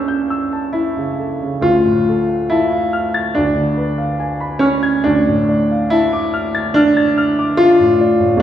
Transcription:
Already playing: C#2 C#3 C#4 D4 A4 E5 G5 A5 E6 G6
0.08 G6
0.30 E6
0.53 A5
0.73 E4 E5
0.97 C#3
1.19 A4
1.43 C#3
1.61 D2 F4
1.85 A2
2.09 A4
2.30 F5
2.50 E4 A5
2.73 F5
2.93 F6
3.14 A6
3.35 D2 D4
3.56 D3
3.77 B4
3.98 F5
4.19 G#5
4.41 B5
4.59 C#4 F6
4.83 G#6
5.04 D2 D4
5.29 A2
5.49 D5
5.71 F5
5.90 E4 A5
6.13 D6
6.34 F6
6.55 A6
6.74 D4 F6
6.97 A6
7.18 F6
7.39 D6
7.57 F4 F5
7.80 A2
8.01 D5
8.20 A2
8.37 G1

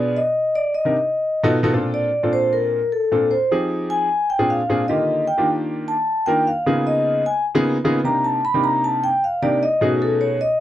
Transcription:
Already playing: B2 B3 D4 F4 G#4 D5
0.17 D#5
0.55 D5
0.74 D#5
0.85 C3 D4 D#4 G4 A#4
1.43 B2 D#4 F4 F#4 A4
1.63 B2 D#4 F4 F#4 A4
1.73 A#2 C4 D4 F4 A4
1.94 D5
2.23 A#2 C4 D4 F4 A4
2.33 C5
2.53 A#4
2.92 A4
3.12 A#2 C4 D4 F4 A4
3.31 C5
3.51 F3 C4 D#4 G4 G#4
3.90 G#5
4.30 G5
4.39 A#2 C4 D4 F4 G#4
4.50 F5
4.69 A#2 C4 D4 F4 G#4
4.88 D3 D#3 A#3 F4 G4 D#5
5.27 G5
5.37 D#3 A#3 D4 F4 G4
5.88 A5
6.26 D#3 A#3 D4 F4 A#4 G5
6.47 F5
6.66 C#3 A#3 B3 D#4 F4 G#4
6.87 D#5
7.26 G#5
7.55 C#3 A#3 B3 D#4 F4 G#4
7.84 C#3 A#3 B3 D#4 F4 G#4
8.04 C3 A#3 D4 D#4 G4 A#5
8.24 A5
8.45 B5
8.54 C3 A#3 D4 D#4 G4
8.64 A#5
8.84 A5
9.04 G5
9.24 F5
9.42 C3 A#3 D4 D#4 G4 D5
9.63 D#5
9.81 B2 A3 C#4 D#4 F#4 G#4
10.02 A4
10.21 C#5
10.41 D#5

